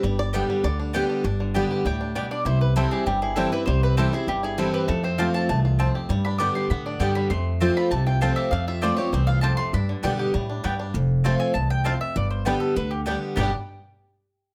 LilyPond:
<<
  \new Staff \with { instrumentName = "Mandolin" } { \time 4/4 \key g \mixolydian \tempo 4 = 198 r1 | r2 g''4. d''8 | c''8 b'8 a'8 aes'8 g'8 aes'8 a'8 b'8 | c''8 b'8 a'8 aes'8 g'8 aes'8 a'8 b'8 |
a'8 c''8 f''8 a''8 a''8 r4. | r8 b''8 d'''8 c'''8 b''8 d''8 g''8 b''8 | c'''4. b''8 a''8 g''8 f''8 e''8 | f''8 e''8 d''8 cis''8 c''8 f''8 a''8 c'''8 |
b''4. r2 r8 | r4. aes''8 a''8 g''8 f''8 e''8 | d''8 c''8 b'8 a'8 b'8 g'8 r4 | g'8 r2. r8 | }
  \new Staff \with { instrumentName = "Mandolin" } { \time 4/4 \key g \mixolydian r4 <b g' d'' g''>8 r4. <b g' d'' g''>8 r8 | r4 <b g' d'' g''>8 r4. <b g' d'' g''>8 r8 | r4 <c' e' c'' g''>8 r4. <c' e' c'' g''>8 r8 | r4 <c' e' c'' g''>8 r4. <c' e' c'' g''>8 r8 |
r4 <c' f' c'' a''>8 r4. <c' f' c'' a''>8 r8 | r4 <b g' d'' g''>8 r4. <b g' d'' g''>8 r8 | r4 <c' f' c'' a''>8 r4. <c' f' c'' a''>8 r8 | r4 <c' f' c'' a''>8 r4. <c' f' c'' a''>8 r8 |
r4 <b g' d'' g''>8 r4. <b g' d'' g''>8 r8 | r4 <c' f' c'' a''>8 r4. <c' f' c'' a''>8 r8 | r4 <b g' d'' g''>8 r4. <b g' d'' g''>8 r8 | <b g' d'' g''>8 r2. r8 | }
  \new Staff \with { instrumentName = "Five-string banjo" } { \time 4/4 \key g \mixolydian << { b'8 d''4. d''4 r4 | r1 | r1 | r1 |
r1 | r1 | r1 | r1 |
r1 | r4 <a c' f'>8 r4. <a c' f'>8 r8 | r4 <g b d'>8 r4. <g b d'>8 r8 | r1 | } \\ { g4 d'8 g4 d'8 g'8 d'8 | d'8 d8 b8 g'8 g8 d'8 g8 d'8 | e'4 c'8 g'8 g8 e'8 g8 e'8 | g8 c'8 g'8 e'8 g8 e'8 c'8 g'8 |
a8 c'8 g'8 f'8 a8 f'8 c'8 g'8 | g8 d'8 b8 g'8 b8 d'8 g'8 g8 | a4 g'8 f'8 a8 f'8 c'8 g'8 | a8 f'8 c'8 g'8 c'8 f'8 g'8 a8 |
d'8 d8 b8 g'8 g8 d'8 g8 d'8 | r1 | r1 | <g b d' g'>8 r2. r8 | } >> }
  \new Staff \with { instrumentName = "Steel-string acoustic guitar" } { \clef bass \time 4/4 \key g \mixolydian << { r4 <d g b g'>4 r4 <d g b g'>4 | r4 <d g b g'>4 r2 | r4 <e g c' e'>4 r4 <e g c' e'>8 <c' e'>8 | r4 <e g c' e'>8 <c' e'>8 r4 <e g c' e'>4 |
r4 <f a c' f'>4 r2 | r4 <d g b g'>4 r4 <d g b g'>4 | r4 <f a c' f'>4 r4 <f a c' f'>4 | r4 <f a c' f'>8 <c' f'>8 r2 |
r4 <d g b g'>4 r2 | r4 <f a c' f'>4 r2 | r4 <d g b g'>4 r4 <d g b g'>4 | <g, b, d g b g'>8 r2. r8 | } \\ { g,2 d2 | g,2 a,4 b,4 | c2 g,2 | c2 g,2 |
f,2 e,4 f,4 | g,2 d2 | f,2 c2 | f,2 e,4 f,4 |
g,2 a,4 g,4 | f,2 e,4 f,4 | g,2 d2 | r1 | } >> }
  \new Staff \with { instrumentName = "Upright bass" } { \clef bass \time 4/4 \key g \mixolydian g,,2 d,2 | g,,2 d,2 | c,2 g,,2 | c,2 g,,2 |
f,2 c,2 | g,2 a,4 g,4 | f,2 c,2 | f,2 c,2 |
g,4 b,4 a,4 g,4 | f,,2 c,2 | g,,2 d,2 | g,,8 r2. r8 | }
>>